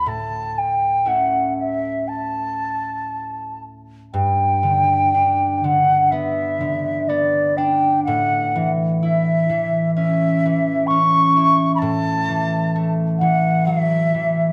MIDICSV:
0, 0, Header, 1, 3, 480
1, 0, Start_track
1, 0, Tempo, 995025
1, 34, Time_signature, 4, 2, 24, 8
1, 995, Tempo, 1027397
1, 2435, Tempo, 975610
1, 3875, Tempo, 934579
1, 7189, End_track
2, 0, Start_track
2, 0, Title_t, "Flute"
2, 0, Program_c, 0, 73
2, 37, Note_on_c, 0, 81, 65
2, 278, Note_on_c, 0, 79, 64
2, 285, Note_off_c, 0, 81, 0
2, 519, Note_on_c, 0, 78, 57
2, 527, Note_off_c, 0, 79, 0
2, 756, Note_off_c, 0, 78, 0
2, 759, Note_on_c, 0, 76, 61
2, 1001, Note_on_c, 0, 81, 59
2, 1008, Note_off_c, 0, 76, 0
2, 1728, Note_off_c, 0, 81, 0
2, 1965, Note_on_c, 0, 79, 78
2, 2645, Note_off_c, 0, 79, 0
2, 2645, Note_on_c, 0, 79, 44
2, 2683, Note_on_c, 0, 78, 78
2, 2690, Note_off_c, 0, 79, 0
2, 2886, Note_off_c, 0, 78, 0
2, 2886, Note_on_c, 0, 78, 55
2, 2907, Note_on_c, 0, 76, 68
2, 2914, Note_off_c, 0, 78, 0
2, 3388, Note_on_c, 0, 74, 67
2, 3395, Note_off_c, 0, 76, 0
2, 3627, Note_on_c, 0, 79, 76
2, 3634, Note_off_c, 0, 74, 0
2, 3855, Note_off_c, 0, 79, 0
2, 3858, Note_on_c, 0, 78, 80
2, 4200, Note_off_c, 0, 78, 0
2, 4350, Note_on_c, 0, 76, 82
2, 4818, Note_off_c, 0, 76, 0
2, 4835, Note_on_c, 0, 76, 89
2, 5310, Note_on_c, 0, 85, 100
2, 5317, Note_off_c, 0, 76, 0
2, 5756, Note_off_c, 0, 85, 0
2, 5764, Note_on_c, 0, 83, 78
2, 5780, Note_on_c, 0, 81, 101
2, 5788, Note_off_c, 0, 83, 0
2, 6374, Note_off_c, 0, 81, 0
2, 6500, Note_on_c, 0, 78, 83
2, 6740, Note_on_c, 0, 76, 86
2, 6748, Note_off_c, 0, 78, 0
2, 7189, Note_off_c, 0, 76, 0
2, 7189, End_track
3, 0, Start_track
3, 0, Title_t, "Harp"
3, 0, Program_c, 1, 46
3, 0, Note_on_c, 1, 38, 60
3, 0, Note_on_c, 1, 57, 35
3, 30, Note_on_c, 1, 45, 49
3, 52, Note_off_c, 1, 38, 0
3, 234, Note_off_c, 1, 57, 0
3, 507, Note_on_c, 1, 57, 33
3, 509, Note_on_c, 1, 61, 29
3, 512, Note_on_c, 1, 64, 38
3, 1882, Note_off_c, 1, 45, 0
3, 1944, Note_off_c, 1, 61, 0
3, 1944, Note_off_c, 1, 64, 0
3, 1963, Note_on_c, 1, 43, 58
3, 2078, Note_off_c, 1, 57, 0
3, 2195, Note_on_c, 1, 50, 40
3, 2435, Note_on_c, 1, 62, 42
3, 2673, Note_off_c, 1, 50, 0
3, 2679, Note_on_c, 1, 50, 43
3, 2914, Note_on_c, 1, 59, 54
3, 3149, Note_off_c, 1, 50, 0
3, 3155, Note_on_c, 1, 50, 44
3, 3392, Note_off_c, 1, 59, 0
3, 3394, Note_on_c, 1, 59, 46
3, 3630, Note_off_c, 1, 62, 0
3, 3632, Note_on_c, 1, 62, 48
3, 3857, Note_off_c, 1, 43, 0
3, 3876, Note_on_c, 1, 45, 56
3, 3899, Note_off_c, 1, 50, 0
3, 4123, Note_on_c, 1, 52, 47
3, 4366, Note_on_c, 1, 64, 46
3, 4599, Note_off_c, 1, 52, 0
3, 4606, Note_on_c, 1, 52, 43
3, 4847, Note_on_c, 1, 61, 52
3, 4878, Note_off_c, 1, 62, 0
3, 4968, Note_off_c, 1, 59, 0
3, 5093, Note_off_c, 1, 52, 0
3, 5100, Note_on_c, 1, 52, 47
3, 5327, Note_off_c, 1, 61, 0
3, 5330, Note_on_c, 1, 61, 53
3, 5565, Note_off_c, 1, 64, 0
3, 5567, Note_on_c, 1, 64, 53
3, 5793, Note_off_c, 1, 45, 0
3, 5799, Note_on_c, 1, 45, 61
3, 5822, Note_off_c, 1, 52, 0
3, 6040, Note_on_c, 1, 52, 47
3, 6281, Note_on_c, 1, 57, 49
3, 6509, Note_off_c, 1, 52, 0
3, 6515, Note_on_c, 1, 52, 46
3, 6749, Note_on_c, 1, 54, 54
3, 6818, Note_off_c, 1, 61, 0
3, 6908, Note_off_c, 1, 64, 0
3, 6988, Note_off_c, 1, 52, 0
3, 6994, Note_on_c, 1, 52, 46
3, 7189, Note_off_c, 1, 45, 0
3, 7189, Note_off_c, 1, 52, 0
3, 7189, Note_off_c, 1, 54, 0
3, 7189, Note_off_c, 1, 57, 0
3, 7189, End_track
0, 0, End_of_file